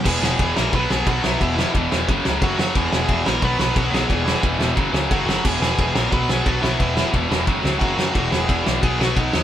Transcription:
<<
  \new Staff \with { instrumentName = "Lead electric guitar" } { \time 4/4 \key e \lydian \tempo 4 = 178 <gis' gis''>8 <gis' gis''>4 <ais' ais''>8 <b' b''>8 <gis' gis''>8 <fis' fis''>8 <e' e''>8~ | <e' e''>4 r2 <fis' fis''>8 <fis' fis''>8 | <gis' gis''>8 <gis' gis''>4 <ais' ais''>8 <b' b''>8 <b' b''>8 <fis' fis''>8 <gis' gis''>8~ | <gis' gis''>4 r2 <fis' fis''>8 <fis' fis''>8 |
<gis' gis''>8 <gis' gis''>4 <ais' ais''>8 <b' b''>8 <gis' gis''>8 <fis' fis''>8 <e' e''>8~ | <e' e''>4 r2 <fis' fis''>8 <fis' fis''>8~ | <fis' fis''>8 <gis' gis''>4 r8 <gis' gis''>8 <fis' fis''>8 <dis' dis''>8 <dis' dis''>8 | }
  \new Staff \with { instrumentName = "Distorted electric guitar" } { \clef bass \time 4/4 \key e \lydian <e, b, e>8 <e, b, e>8 <e, b, e>8 <e, b, e>8 <b, fis b>8 <b, fis b>8 <b, fis b>8 <b, fis b>8 | <e, b, e>8 <e, b, e>8 <e, b, e>8 <e, b, e>8 <fis, cis fis>8 <fis, cis fis>8 <fis, cis fis>8 <fis, cis fis>8 | <e, b, e>8 <e, b, e>8 <e, b, e>8 <e, b, e>8 <b, fis b>8 <b, fis b>8 <b, fis b>8 <b, fis b>8 | <e, b, e>8 <e, b, e>8 <e, b, e>8 <e, b, e>8 <fis, cis fis>8 <fis, cis fis>8 <fis, cis fis>8 <fis, cis fis>8 |
<e, b, e>8 <e, b, e>8 <e, b, e>8 <e, b, e>8 <b, fis b>8 <b, fis b>8 <b, fis b>8 <b, fis b>8 | <e, b, e>8 <e, b, e>8 <e, b, e>8 <e, b, e>8 <fis, cis fis>8 <fis, cis fis>8 <fis, cis fis>8 <fis, cis fis>8 | <e, b, e>8 <e, b, e>8 <e, b, e>8 <e, b, e>8 <b, fis b>8 <b, fis b>8 <b, fis b>8 <b, fis b>8 | }
  \new Staff \with { instrumentName = "Picked electric bass" } { \clef bass \time 4/4 \key e \lydian e,,8 e,,8 e,,8 ais,,8 b,,8 b,,8 b,,8 b,,8 | e,,4 e,,8 e,,8 fis,,8 cis,8 fis,,8 fis,8 | e,,8 e,,8 e,,8 ais,,8 b,,8 b,,8 b,,8 b,,8 | e,,4 e,,8 e,,8 fis,,8 cis,8 fis,,8 fis,,8 |
e,,8 e,,8 e,,8 ais,,8 b,,8 b,,8 b,,8 b,,8 | e,,4 e,,8 e,,8 fis,,8 cis,8 fis,,8 fis,8 | e,,8 e,,8 e,,8 b,,8 b,,8 b,,8 b,,8 dis,8 | }
  \new DrumStaff \with { instrumentName = "Drums" } \drummode { \time 4/4 <cymc bd>8 sn8 <bd cymr>8 sn8 <bd cymr>8 sn8 <bd cymr>8 sn8 | <bd cymr>8 sn8 <bd cymr>8 sn8 <bd cymr>8 sn8 <bd cymr>8 sn8 | <bd cymr>8 sn8 <bd cymr>8 sn8 <bd cymr>8 sn8 <bd cymr>8 sn8 | <bd cymr>8 sn8 <bd cymr>8 sn8 <bd cymr>8 sn8 <bd cymr>8 sn8 |
<cymc bd>8 sn8 <bd cymr>8 sn8 <bd cymr>8 sn8 <bd cymr>8 sn8 | <bd cymr>8 sn8 <bd cymr>8 sn8 <bd cymr>8 sn8 <bd cymr>8 sn8 | <bd cymr>8 sn8 <bd cymr>8 sn8 <bd cymr>8 sn8 <bd cymr>8 sn8 | }
>>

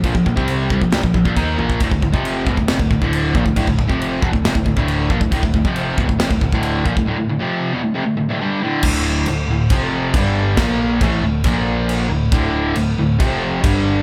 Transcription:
<<
  \new Staff \with { instrumentName = "Distorted electric guitar" } { \clef bass \time 4/4 \key d \minor \tempo 4 = 137 <bes, f>16 <bes, f>16 <bes, f>16 <c g c'>8. <c g>16 <bes, f>16 <c g>16 <bes, f>16 <bes, f>16 <bes, f>16 <ees bes ees'>8 <bes, f bes>8 | <d, a,>16 <d, a,>16 <d, a,>16 <f, c f>8. <e, b,>16 <d, a,>16 <f, c>16 <d, a,>16 <d, a,>16 <d, a, d>8. <bes, f>16 <d, a,>16 | <d, a,>16 <d, a,>16 <d, a,>16 <f, c f>8. <e, b,>16 <d, a,>16 <f, c>16 <d, a,>16 <d, a,>16 <d, a, d>8. <bes, f>16 <d, a,>16 | <d, a,>16 <d, a,>16 <d, a,>16 <f, c f>8. <e, b,>16 <d, a,>16 <f, c>16 <d, a,>16 <d, a,>16 <d, a, d>8. <bes, f>16 <d, a,>16 |
<d, a,>16 <d, a,>16 <d, a,>16 <f, c f>8. <e, b,>16 <d, a,>16 <f, c>16 <d, a,>16 <d, a,>16 <d, a,>16 <g, d g>8 <d, a, d>8 | <d, a, d>4 <d, a,>8 <d, a,>8 <f, c f>4 <g, d g>4 | <bes, f bes>4 <a, e a>8 <d, a,>8 <bes, f bes>4. <d, a,>8 | <d, a, d>4 <d, a,>8 <d, a,>8 <f, c f>4 <g, d g>4 | }
  \new Staff \with { instrumentName = "Picked electric bass" } { \clef bass \time 4/4 \key d \minor bes,,16 bes,,16 bes,,16 c,8. c,16 bes,,16 c,16 bes,,16 bes,,16 bes,,16 ees,8 bes,,8 | d,,16 d,,16 d,,16 f,,8. e,,16 d,,16 f,,16 d,,16 d,,16 d,,8. bes,,16 d,,16 | d,,16 d,,16 d,,16 f,,8. e,,16 d,,16 f,,16 d,,16 d,,16 d,,8. bes,,16 d,,16 | d,,16 d,,16 d,,16 f,,8. e,,16 d,,16 f,,16 d,,16 d,,16 d,,8. bes,,16 d,,16 |
r1 | d,,4 d,,8 d,,8 f,,4 g,,4 | bes,,4 a,,8 d,,8 bes,,4. d,,8 | d,,4 d,,8 d,,8 f,,4 g,,4 | }
  \new DrumStaff \with { instrumentName = "Drums" } \drummode { \time 4/4 <cymc bd>16 bd16 bd16 bd16 cymc8 bd16 bd16 <cymc sn>16 bd16 bd16 bd16 <cymc bd>8 tommh16 bd16 | <cymc bd>16 bd16 bd16 bd16 cymc8 bd16 bd16 <cymc sn>16 bd16 bd16 bd16 cymc8 bd16 bd16 | <cymc bd>16 bd16 bd16 bd16 cymc8 bd16 bd16 <cymc sn>16 bd16 bd16 bd16 cymc8 bd16 bd16 | <cymc bd>16 bd16 bd16 bd16 cymc8 bd16 bd16 <cymc sn>16 bd16 bd16 bd16 cymc8 bd16 bd16 |
r4 r4 r4 r4 | <cymc bd>4 cymc4 <cymc bd>4 <cymc bd>4 | <cymc bd sn>4 <cymc bd>4 <cymc bd>4 cymc4 | <cymc bd>4 cymc4 <cymc bd>4 <cymc bd>4 | }
>>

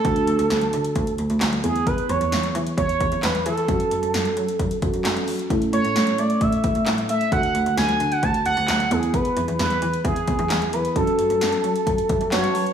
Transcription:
<<
  \new Staff \with { instrumentName = "Analog synth lead" } { \time 4/4 \key fis \minor \tempo 4 = 132 a'2~ a'8 r4 gis'8 | b'8 cis''4 r8 cis''4 b'8 a'8~ | a'2~ a'8 r4. | r8 cis''4 d''8 e''4 r8 e''8 |
fis''4 gis''8. fis''16 a''8 fis''4 gis'8 | b'4 b'4 gis'4. b'8 | a'2. cis''4 | }
  \new Staff \with { instrumentName = "FM electric piano" } { \time 4/4 \key fis \minor << { r1 | r1 | r1 | r1 |
r1 | r1 | r2 r8 e''8 fis''16 a''8. | } \\ { <d' fis' a'>2.~ <d' fis' a'>8 <b e' gis'>8~ | <b e' gis'>2.~ <b e' gis'>8 r8 | <cis' fis' a'>2~ <cis' fis' a'>8 <cis' fis' a'>4. | <cis' e' a'>1 |
<d' fis' a'>2.~ <d' fis' a'>8 <b e' gis'>8~ | <b e' gis'>2~ <b e' gis'>8 <b e' gis'>4. | <cis' fis' a'>2. <cis' fis' b'>4 | } >> }
  \new Staff \with { instrumentName = "Cello" } { \clef bass \time 4/4 \key fis \minor d,16 r16 d,16 d,16 d,16 r16 d16 r16 d,16 r16 d,16 d,16 d,16 r16 e,8~ | e,16 r16 e,16 e,16 e,16 r16 e16 r16 e,16 r16 e,16 e,16 e,16 r16 e16 r16 | fis,16 r16 fis,16 fis,16 fis,16 r16 fis16 r16 fis,16 r16 fis,16 fis,16 fis,16 r16 fis16 r16 | a,16 r16 a,16 a,16 a,16 r16 a16 r16 a,16 r16 a,16 a,16 a,16 r16 a16 r16 |
d,16 r16 d,16 d,16 d,16 r16 d16 r16 d,16 r16 d,16 d,16 d,16 r16 e,8~ | e,16 r16 e,16 e,16 e,16 r16 e16 r16 e,16 r16 e,16 e,16 e,16 r16 e16 r16 | fis,16 r16 fis,16 fis,16 fis,16 r16 fis16 r16 fis,16 r16 fis,16 fis,16 fis,16 r16 fis16 r16 | }
  \new DrumStaff \with { instrumentName = "Drums" } \drummode { \time 4/4 <hh bd>16 hh16 hh16 hh16 <hh sn>16 hh16 hh16 hh16 <hh bd>16 hh16 hh16 hh16 <hc hh sn>16 hh16 hh16 hh16 | <hh bd>16 hh16 hh16 hh16 <hh sn>16 hh16 hh16 hh16 <hh bd>16 hh16 <hh bd>16 hh16 <hc hh sn>16 hh16 hh16 hh16 | <hh bd>16 hh16 hh16 hh16 <hh sn>16 hh16 hh16 hh16 <hh bd>16 hh16 <hh bd>16 hh16 <hc hh sn>16 hh16 hho16 hh16 | <hh bd>16 hh16 hh16 hh16 <hh sn>16 hh16 hh16 hh16 <hh bd>16 hh16 <hh bd>16 hh16 <hc hh sn>16 hh16 hh16 hh16 |
<hh bd>16 hh16 hh16 hh16 <hh sn>16 hh16 hh16 hh16 <hh bd>16 hh16 hh16 hh16 <hc hh sn>16 hh16 hh16 hh16 | <hh bd>16 hh16 hh16 hh16 <hh sn>16 hh16 hh16 hh16 <hh bd>16 hh16 <hh bd>16 hh16 <hc hh sn>16 hh16 hh16 hh16 | <hh bd>16 hh16 hh16 hh16 <hh sn>16 hh16 hh16 hh16 <hh bd>16 hh16 <hh bd>16 hh16 <hc hh sn>16 hh16 hho16 hh16 | }
>>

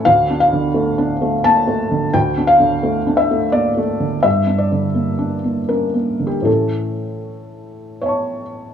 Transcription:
<<
  \new Staff \with { instrumentName = "Felt piano" } { \time 3/4 \key d \minor \tempo 4 = 85 f''8 f''4. a''4 | g''8 f''4 e''8 d''4 | e''8 d''4. bes'8. g'16 | a'2 <cis'' e'' a'' cis'''>4 | }
  \new Staff \with { instrumentName = "Felt piano" } { \time 3/4 \key d \minor \tuplet 3/2 { d,8 d'8 d8 a8 d'8 a8 bes8 a8 d8 } | \tuplet 3/2 { d,8 d'8 d8 a8 d'8 a8 bes8 a8 d8 } | \tuplet 3/2 { g,8 d'8 d8 bes8 d'8 bes8 cis'8 bes8 d8 } | <a, e a cis'>2. | }
>>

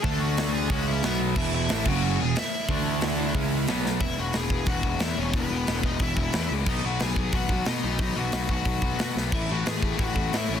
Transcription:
<<
  \new Staff \with { instrumentName = "Lead electric guitar" } { \time 4/4 \key e \major \tempo 4 = 181 <a' a''>8 <fis' fis''>4 <gis' gis''>8 <fis' fis''>8 <e' e''>4 r8 | <e' e''>8 <e' e''>4 <fis' fis''>4 <gis' gis''>8 <e' e''>4~ | <e' e''>2. r4 | <e' e''>8 <fis' fis''>8 <gis' gis''>4 <fis' fis''>4 <e' e''>8 <cis' cis''>8 |
<b b'>4. <dis' dis''>8 <e' e''>4. r8 | <dis' dis''>8 <fis' fis''>8 <gis' gis''>4 <fis' fis''>4 <dis' dis''>4 | <dis' dis''>8 <fis' fis''>4 <fis' fis''>2 r8 | <e' e''>8 <fis' fis''>8 <gis' gis''>4 <fis' fis''>4 <e' e''>8 <cis' cis''>8 | }
  \new Staff \with { instrumentName = "Distorted electric guitar" } { \clef bass \time 4/4 \key e \major <d a d'>2 <cis gis cis'>4 <b, fis b>4 | <e, b, e>4 <a, e a>8 <fis, cis fis>4 <e, b,>8 r4 | <d a d'>2 <cis gis cis'>4 <b, fis b>4 | r1 |
r1 | r1 | r1 | r1 | }
  \new Staff \with { instrumentName = "Overdriven electric guitar" } { \clef bass \time 4/4 \key e \major <d a d'>2 <cis gis cis'>4 <b, fis b>4 | <e, b, e>4 <a, e a>8 <fis, cis fis>4 <e, b,>8 r4 | <d a d'>2 <cis gis cis'>4 <b, fis b>4 | <e, b, e>8 <e, b, e>8 <e, b, e>8 <e, b, e>8 <e, b, e>8 <e, b, e>8 <e, b, e>8 <e, b, e>8 |
<e, b, e>8 <e, b, e>8 <e, b, e>8 <e, b, e>8 <e, b, e>8 <e, b, e>8 <e, b, e>8 <e, b, e>8 | <b, fis b>8 <b, fis b>8 <b, fis b>8 <b, fis b>8 <b, fis b>8 <b, fis b>8 <b, fis b>8 <b, fis b>8 | <b, fis b>8 <b, fis b>8 <b, fis b>8 <b, fis b>8 <b, fis b>8 <b, fis b>8 <b, fis b>8 <b, fis b>8 | <a, e a>8 <a, e a>8 <a, e a>8 <a, e a>8 <a, e a>8 <a, e a>8 <a, e a>8 <a, e a>8 | }
  \new Staff \with { instrumentName = "Overdriven electric guitar" } { \clef bass \time 4/4 \key e \major <d a d'>2 <cis gis cis'>4 <b, fis b>4 | <e, b, e>4 <a, e a>8 <fis, cis fis>4 <e, b,>8 r4 | <d a d'>2 <cis gis cis'>4 <b, fis b>4 | r1 |
r1 | r1 | r1 | r1 | }
  \new Staff \with { instrumentName = "Picked electric bass" } { \clef bass \time 4/4 \key e \major d,2 cis,4 b,,4 | e,,4 a,,8 fis,,4 e,,8 r4 | d,2 cis,4 b,,4 | e,,8 e,,8 e,,4 e,,8 e,,8 e,8 e,,8 |
e,,8 e,,8 e,,8 e,,8 e,,8 e,,8 e,8 cis,8 | b,,8 b,,8 b,,4 b,,8 b,,8 b,8 b,,8 | b,,8 b,,8 b,,8 b,,8 b,,8 b,,8 b,8 b,,8 | a,,8 a,,8 a,,4 a,,8 a,,8 a,8 a,,8 | }
  \new DrumStaff \with { instrumentName = "Drums" } \drummode { \time 4/4 <hho bd>4 <hho sn>4 <hho bd>4 <hho sn>4 | <cymc bd>4 <hho sn>8 <cymc bd>8 r4 <hho sn>4 | <hho bd>4 <hho sn>4 bd4 <hho sn>8 sn8 | <hho bd>4 <hho sn>8 bd8 <hho bd>8 bd8 <hho sn>4 |
<hho bd>4 <hho sn>8 bd8 <hho bd>8 bd8 <hho sn>4 | <cymc bd>4 <hho sn>8 bd8 <hho bd>8 bd8 <hho sn>4 | <hho bd>4 <hho sn>8 bd8 <hho bd>8 bd8 <hho sn>8 sn8 | <cymc bd>4 <hho sn>8 bd8 <hho bd>8 bd8 <hho sn>4 | }
>>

